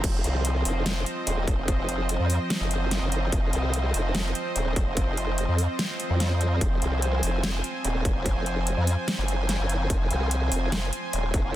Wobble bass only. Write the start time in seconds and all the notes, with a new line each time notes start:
0.04 F1
0.24 C2
0.65 F1
1.27 D#1
1.48 F1
1.58 F#1
1.78 F1
2.19 F2
2.61 F#1
3.02 F#1
3.32 F1
3.53 C2
3.94 F1
4.56 D#1
4.76 F1
4.87 F#1
5.07 F1
5.48 F2
6.10 F2
6.61 F1
6.82 C2
7.23 F1
7.85 D#1
8.05 F1
8.15 F#1
8.36 F1
8.77 F2
9.18 F#1
9.59 F#1
9.90 F1
10.11 C2
10.52 F1
11.13 D#1
11.34 F1
11.44 F#1